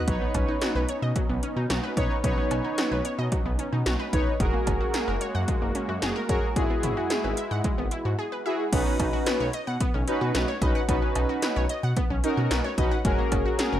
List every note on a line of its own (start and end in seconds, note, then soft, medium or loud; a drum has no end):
0.08 0.18 B1 loud
0.08 0.16 F#3 medium
0.08 4.36 B3 medium
0.08 4.36 C#4 medium
0.08 0.84 D#4 medium
0.08 4.36 D#4 medium
0.08 0.84 B4 medium
0.08 0.84 C#5 medium
0.08 kick loud
0.08 closed hi-hat medium
0.21 0.30 B3 medium
0.34 0.45 B1 loud
0.34 0.43 C#4 medium
0.34 kick medium
0.34 closed hi-hat medium
0.34 cowbell medium
0.48 0.57 D#4 medium
0.61 0.70 F#4 medium
0.61 snare loud
0.61 closed hi-hat medium
0.75 0.85 B1 loud
0.75 0.84 B4 medium
0.89 0.97 C#5 medium
0.89 closed hi-hat medium
1.02 1.12 B2 loud
1.02 1.11 D#5 medium
1.16 1.24 F#3 medium
1.16 kick medium
1.16 closed hi-hat medium
1.29 1.39 B1 loud
1.29 1.38 B3 medium
1.43 1.51 C#4 medium
1.43 closed hi-hat medium
1.56 1.66 B2 loud
1.56 1.65 D#4 medium
1.70 1.80 B1 loud
1.70 1.78 F#4 loud
1.70 snare loud
1.70 closed hi-hat medium
1.84 1.92 B4 medium
1.97 2.07 B1 loud
1.97 2.16 D#4 medium
1.97 2.16 B4 medium
1.97 2.16 C#5 loud
1.97 2.05 C#5 medium
1.97 kick loud
1.97 closed hi-hat medium
2.24 2.34 B1 loud
2.24 2.32 F#3 medium
2.24 3.00 D#4 medium
2.24 3.00 B4 medium
2.24 3.00 C#5 medium
2.24 kick loud
2.24 closed hi-hat medium
2.38 2.46 B3 medium
2.51 2.61 B1 loud
2.51 2.59 C#4 medium
2.51 closed hi-hat medium
2.51 cowbell medium
2.65 2.73 D#4 medium
2.78 2.86 F#4 medium
2.78 snare loud
2.78 closed hi-hat medium
2.91 3.01 B1 loud
2.91 3.00 B4 medium
3.05 3.13 C#5 medium
3.05 closed hi-hat medium
3.18 3.29 B2 loud
3.18 3.27 D#5 medium
3.32 3.40 F#3 medium
3.32 kick medium
3.32 closed hi-hat medium
3.45 3.56 B1 medium
3.45 3.54 B3 medium
3.59 3.67 C#4 medium
3.59 closed hi-hat medium
3.72 3.83 B2 loud
3.72 3.81 D#4 medium
3.86 3.96 B1 medium
3.86 3.94 F#4 medium
3.86 snare loud
3.86 closed hi-hat medium
3.99 4.08 B4 medium
4.13 4.23 B1 loud
4.13 4.32 D#4 medium
4.13 4.32 B4 medium
4.13 4.21 C#5 medium
4.13 4.32 C#5 loud
4.13 kick loud
4.13 closed hi-hat medium
4.40 4.50 F#1 loud
4.40 4.48 G#3 medium
4.40 6.54 G#3 medium
4.40 6.54 A#3 medium
4.40 5.16 F#4 medium
4.40 8.69 F#4 medium
4.40 5.16 G#4 medium
4.40 5.16 A#4 medium
4.40 kick loud
4.40 closed hi-hat medium
4.53 4.62 A#3 medium
4.67 4.77 F#1 loud
4.67 4.75 C#4 medium
4.67 kick medium
4.67 closed hi-hat medium
4.67 cowbell medium
4.81 4.89 F#4 medium
4.94 5.03 G#4 medium
4.94 snare loud
4.94 closed hi-hat medium
5.08 5.18 F#1 medium
5.08 5.16 A#4 medium
5.21 5.30 C#5 medium
5.21 closed hi-hat medium
5.35 5.45 F#2 loud
5.35 5.43 F#5 medium
5.48 5.57 G#3 medium
5.48 kick medium
5.48 closed hi-hat medium
5.62 5.72 F#1 loud
5.62 5.70 A#3 medium
5.75 5.84 C#4 medium
5.75 closed hi-hat medium
5.89 5.99 F#2 loud
5.89 5.97 F#4 medium
6.02 6.12 F#1 loud
6.02 6.11 G#4 medium
6.02 snare loud
6.02 closed hi-hat medium
6.16 6.24 A#4 medium
6.29 6.39 F#1 loud
6.29 6.48 F#4 medium
6.29 6.48 G#4 medium
6.29 6.48 A#4 loud
6.29 6.38 C#5 medium
6.29 kick loud
6.29 closed hi-hat medium
6.56 6.66 G#1 loud
6.56 6.65 G#3 medium
6.56 8.70 G#3 medium
6.56 7.32 E4 medium
6.56 8.70 E4 medium
6.56 7.32 F#4 medium
6.56 7.32 G#4 medium
6.56 kick loud
6.56 closed hi-hat medium
6.70 6.78 B3 medium
6.83 6.94 G#1 medium
6.83 6.92 E4 medium
6.83 closed hi-hat medium
6.83 mid tom loud
6.97 7.05 F#4 medium
7.10 7.19 G#4 medium
7.10 snare loud
7.10 closed hi-hat medium
7.24 7.34 G#1 loud
7.24 7.32 B4 medium
7.37 7.46 E5 medium
7.37 closed hi-hat medium
7.51 7.61 G#2 loud
7.51 7.59 F#5 medium
7.64 7.73 G#3 medium
7.64 kick medium
7.64 closed hi-hat medium
7.78 7.88 G#1 loud
7.78 7.86 B3 medium
7.91 8.00 E4 medium
7.91 closed hi-hat medium
8.05 8.15 G#2 loud
8.05 8.13 F#4 medium
8.19 8.27 G#4 loud
8.32 8.40 B4 medium
8.45 8.65 E4 medium
8.45 8.64 F#4 medium
8.45 8.64 G#4 loud
8.45 8.54 E5 loud
8.72 8.83 B1 loud
8.72 8.81 B3 medium
8.72 9.48 C#4 medium
8.72 9.49 D#4 medium
8.72 9.48 F#4 medium
8.72 9.49 B4 medium
8.72 kick loud
8.72 closed hi-hat medium
8.72 crash loud
8.86 8.94 C#4 medium
8.99 9.10 B1 loud
8.99 9.08 D#4 medium
8.99 kick medium
8.99 closed hi-hat medium
8.99 cowbell medium
9.13 9.21 F#4 medium
9.26 9.35 B4 medium
9.26 snare loud
9.26 closed hi-hat medium
9.40 9.50 B1 loud
9.40 9.49 C#5 medium
9.53 9.62 D#5 loud
9.53 closed hi-hat medium
9.67 9.77 B2 loud
9.67 9.76 F#5 medium
9.80 9.89 B3 medium
9.80 kick medium
9.80 closed hi-hat medium
9.94 10.04 B1 loud
9.94 10.03 C#4 medium
10.08 10.46 C#4 medium
10.08 10.46 D#4 medium
10.08 10.16 D#4 medium
10.08 10.46 F#4 medium
10.08 10.46 B4 loud
10.08 closed hi-hat medium
10.21 10.31 B2 loud
10.21 10.30 F#4 medium
10.35 10.45 B1 loud
10.35 10.43 B4 medium
10.35 snare loud
10.35 closed hi-hat medium
10.48 10.57 C#5 medium
10.62 10.72 B1 loud
10.62 10.81 C#4 medium
10.62 10.81 D#4 medium
10.62 10.81 F#4 medium
10.62 10.81 B4 medium
10.62 10.70 D#5 medium
10.62 kick loud
10.62 closed hi-hat medium
10.75 10.84 F#5 medium
10.89 10.99 B1 loud
10.89 10.97 B3 loud
10.89 11.65 C#4 medium
10.89 11.65 D#4 medium
10.89 11.65 F#4 medium
10.89 11.65 B4 medium
10.89 kick loud
10.89 closed hi-hat medium
11.02 11.11 C#4 medium
11.15 11.26 B1 loud
11.15 11.24 D#4 medium
11.15 closed hi-hat medium
11.15 cowbell medium
11.29 11.38 F#4 medium
11.42 11.51 B4 loud
11.42 snare loud
11.42 closed hi-hat medium
11.56 11.67 B1 loud
11.56 11.65 C#5 medium
11.69 11.78 D#5 medium
11.69 closed hi-hat medium
11.83 11.93 B2 loud
11.83 11.92 F#5 medium
11.97 12.05 B3 medium
11.97 kick medium
11.97 closed hi-hat medium
12.10 12.20 B1 medium
12.10 12.19 C#4 medium
12.24 12.62 C#4 medium
12.24 12.32 D#4 medium
12.24 12.62 D#4 medium
12.24 12.62 F#4 medium
12.24 12.62 A#4 loud
12.24 closed hi-hat medium
12.37 12.47 B2 loud
12.37 12.46 F#4 medium
12.51 12.61 B1 medium
12.51 12.59 B4 medium
12.51 snare loud
12.51 closed hi-hat medium
12.64 12.73 C#5 medium
12.78 12.88 B1 loud
12.78 12.97 C#4 medium
12.78 12.97 D#4 medium
12.78 12.97 F#4 medium
12.78 12.97 B4 medium
12.78 12.86 D#5 medium
12.78 kick loud
12.78 closed hi-hat medium
12.91 13.00 F#5 medium
13.05 13.15 F#1 loud
13.05 13.13 G#3 loud
13.05 13.80 C#4 medium
13.05 13.80 F#4 medium
13.05 13.80 G#4 medium
13.05 13.80 A#4 loud
13.05 kick loud
13.05 closed hi-hat medium
13.19 13.27 A#3 medium
13.32 13.42 F#1 loud
13.32 13.40 C#4 medium
13.32 kick medium
13.32 closed hi-hat medium
13.32 cowbell medium
13.46 13.54 F#4 medium
13.59 13.67 G#4 loud
13.59 snare loud
13.59 closed hi-hat medium
13.72 13.80 F#1 loud
13.72 13.80 A#4 medium